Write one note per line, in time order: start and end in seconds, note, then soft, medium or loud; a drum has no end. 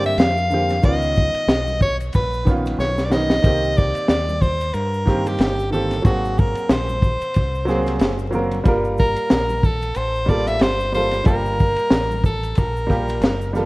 0.00 0.14 G2 medium
0.00 0.29 D3 medium
0.00 0.30 A#3 medium
0.00 0.31 C4 medium
0.00 0.31 G4 medium
0.00 high conga medium
0.00 maracas soft
0.06 0.20 E5 loud
0.06 ride medium
0.17 0.80 F2 loud
0.17 0.83 F5 loud
0.17 snare loud
0.17 hi-hat pedal soft
0.17 ride medium
0.17 maracas soft
0.37 maracas soft
0.50 0.73 D3 medium
0.50 0.74 A#3 medium
0.50 0.75 C4 medium
0.50 low conga medium
0.50 maracas soft
0.54 0.75 G4 medium
0.69 snare soft
0.69 ride medium
0.69 high conga medium
0.69 maracas soft
0.82 1.32 C#2 medium
0.82 1.71 D#3 medium
0.82 1.71 B3 medium
0.82 1.72 C#4 medium
0.82 1.78 D#5 loud
0.82 kick loud
0.82 ride medium
0.82 maracas medium
0.86 1.73 F4 medium
1.02 maracas soft
1.16 kick medium
1.16 high conga soft
1.16 maracas soft
1.34 muted fingered electric bass stroke soft
1.34 ride medium
1.34 maracas soft
1.47 2.10 B1 medium
1.47 snare loud
1.47 hi-hat pedal soft
1.47 ride medium
1.47 low conga medium
1.47 maracas medium
1.67 high conga medium
1.67 maracas soft
1.81 1.96 C#5 medium
1.81 kick medium
1.81 low conga medium
1.81 maracas soft
2.00 ride soft
2.00 maracas soft
2.12 2.76 A#1 medium
2.12 2.51 B4 medium
2.12 kick medium
2.12 ride medium
2.12 high conga soft
2.12 maracas medium
2.33 maracas soft
2.45 2.90 D#3 medium
2.45 2.91 B3 medium
2.45 2.91 C#4 medium
2.45 2.92 F4 medium
2.45 kick medium
2.45 snare soft
2.45 maracas soft
2.66 ride medium
2.66 high conga medium
2.66 maracas soft
2.78 3.41 B1 loud
2.78 3.07 C#5 medium
2.78 snare medium
2.78 maracas soft
2.98 snare medium
2.98 maracas soft
3.05 3.13 D5 medium
3.10 3.34 D#3 medium
3.10 3.34 B3 medium
3.10 3.35 C#4 medium
3.10 3.78 D#5 loud
3.10 snare medium
3.10 low conga medium
3.10 maracas soft
3.14 3.36 D#4 medium
3.30 snare medium
3.30 high conga medium
3.30 maracas soft
3.42 3.93 C2 medium
3.42 4.31 D#3 medium
3.42 4.32 A#3 medium
3.42 4.32 C4 medium
3.42 kick loud
3.42 ride medium
3.42 maracas medium
3.46 4.33 G4 medium
3.64 maracas soft
3.77 4.09 D5 medium
3.77 kick medium
3.77 maracas soft
3.95 muted fingered electric bass stroke soft
3.95 ride medium
3.95 maracas soft
4.08 4.71 D#2 medium
4.08 4.43 D5 medium
4.08 snare loud
4.08 hi-hat pedal soft
4.08 ride medium
4.08 low conga medium
4.08 maracas medium
4.29 high conga medium
4.29 maracas soft
4.41 4.75 C5 medium
4.41 kick medium
4.41 low conga medium
4.41 maracas soft
4.60 ride soft
4.60 maracas soft
4.74 5.36 G2 medium
4.74 5.29 A#4 medium
4.74 ride medium
4.74 maracas medium
4.94 maracas soft
5.05 5.51 D#3 medium
5.05 5.51 A#3 medium
5.05 5.52 C4 medium
5.05 5.53 G4 medium
5.05 kick medium
5.05 snare soft
5.05 maracas soft
5.26 5.71 G4 medium
5.26 ride medium
5.26 high conga medium
5.26 maracas soft
5.39 6.01 G1 medium
5.39 snare medium
5.39 hi-hat pedal soft
5.39 ride medium
5.39 maracas soft
5.59 maracas soft
5.70 5.95 D#3 medium
5.70 5.95 A#3 medium
5.70 5.96 C4 medium
5.70 6.02 A4 medium
5.70 low conga medium
5.70 maracas soft
5.74 5.97 G4 medium
5.91 snare soft
5.91 ride medium
5.91 high conga soft
5.91 maracas soft
6.02 6.53 G#1 loud
6.02 6.92 F#3 medium
6.02 6.92 A#3 medium
6.02 6.93 C4 medium
6.02 6.41 F#4 medium
6.02 kick loud
6.02 ride medium
6.02 maracas medium
6.06 6.94 G#4 medium
6.25 maracas soft
6.38 6.71 A#4 medium
6.38 kick medium
6.38 maracas soft
6.55 muted fingered electric bass stroke soft
6.55 ride medium
6.55 maracas soft
6.69 7.19 A#1 medium
6.69 7.97 C5 medium
6.69 snare loud
6.69 hi-hat pedal soft
6.69 ride medium
6.69 low conga medium
6.69 maracas medium
6.89 high conga medium
6.89 maracas soft
7.02 kick medium
7.02 low conga medium
7.02 maracas soft
7.21 muted fingered electric bass stroke soft
7.21 ride soft
7.21 maracas soft
7.34 7.98 C2 medium
7.34 kick medium
7.34 ride medium
7.34 maracas medium
7.55 maracas soft
7.65 8.11 F#3 medium
7.65 8.12 A#3 medium
7.65 8.13 C4 medium
7.65 8.13 G#4 medium
7.65 snare soft
7.65 maracas soft
7.86 snare soft
7.86 ride medium
7.86 high conga medium
7.86 maracas soft
7.99 8.62 F#1 medium
7.99 snare loud
7.99 hi-hat pedal soft
7.99 ride medium
7.99 maracas soft
8.19 maracas soft
8.31 8.55 F#3 medium
8.31 8.56 A#3 medium
8.31 8.57 C4 medium
8.31 low conga medium
8.31 maracas soft
8.35 8.57 A#4 medium
8.51 ride medium
8.51 high conga medium
8.51 maracas soft
8.64 9.14 G1 loud
8.64 9.53 G3 medium
8.64 9.53 A#3 medium
8.64 9.54 F4 medium
8.64 kick loud
8.64 ride medium
8.64 maracas medium
8.68 9.55 A#4 medium
8.84 maracas soft
8.98 9.66 A#4 medium
8.98 kick medium
8.98 maracas soft
9.16 muted fingered electric bass stroke soft
9.16 ride medium
9.16 maracas soft
9.30 9.93 A#1 medium
9.30 snare loud
9.30 hi-hat pedal soft
9.30 ride medium
9.30 low conga medium
9.30 maracas medium
9.49 high conga medium
9.49 maracas soft
9.63 9.98 A4 medium
9.63 kick medium
9.63 low conga medium
9.63 maracas soft
9.82 ride soft
9.82 maracas soft
9.95 10.58 A1 medium
9.95 10.31 C5 medium
9.95 ride medium
9.95 maracas medium
10.16 maracas soft
10.26 10.72 G3 medium
10.26 10.73 A#3 medium
10.26 10.74 F4 medium
10.26 10.49 D5 medium
10.26 kick medium
10.26 maracas soft
10.30 10.74 A4 medium
10.46 10.64 E5 loud
10.46 snare soft
10.46 ride medium
10.46 high conga medium
10.46 maracas soft
10.59 11.23 G1 medium
10.59 10.94 C5 medium
10.59 snare loud
10.59 hi-hat pedal soft
10.59 ride medium
10.59 maracas soft
10.80 maracas soft
10.92 11.16 G3 medium
10.92 11.17 A#3 medium
10.92 11.18 F4 medium
10.92 11.25 C5 medium
10.92 snare soft
10.92 low conga medium
10.92 maracas soft
10.97 11.19 A4 medium
11.11 snare soft
11.11 ride medium
11.11 high conga soft
11.11 maracas soft
11.24 11.75 G1 loud
11.24 12.13 G3 medium
11.24 12.14 A#3 medium
11.24 12.14 F4 medium
11.24 12.15 G4 medium
11.24 12.21 A#4 medium
11.24 kick loud
11.24 ride medium
11.24 maracas medium
11.46 maracas soft
11.59 kick medium
11.59 high conga soft
11.59 maracas soft
11.76 ride medium
11.76 maracas soft
11.90 12.53 A1 medium
11.90 snare loud
11.90 hi-hat pedal soft
11.90 ride medium
11.90 low conga medium
11.90 maracas medium
12.11 high conga medium
12.11 maracas soft
12.24 12.60 A4 medium
12.24 kick medium
12.24 low conga medium
12.24 maracas soft
12.43 ride soft
12.43 maracas soft
12.55 13.19 A#1 medium
12.55 13.56 A#4 medium
12.55 kick medium
12.55 ride medium
12.55 high conga soft
12.55 maracas medium
12.76 maracas soft
12.87 13.33 G3 medium
12.87 13.34 A#3 medium
12.87 13.34 F4 medium
12.87 13.35 G4 medium
12.87 kick medium
12.87 snare soft
12.87 maracas soft
13.08 ride medium
13.08 high conga medium
13.08 maracas soft
13.21 13.65 F#1 medium
13.21 snare loud
13.21 hi-hat pedal soft
13.21 ride medium
13.21 maracas soft
13.41 maracas soft
13.53 13.65 G3 medium
13.53 13.65 A#3 medium
13.53 13.65 F4 medium
13.53 13.65 A4 medium
13.53 snare soft
13.53 low conga medium
13.53 maracas soft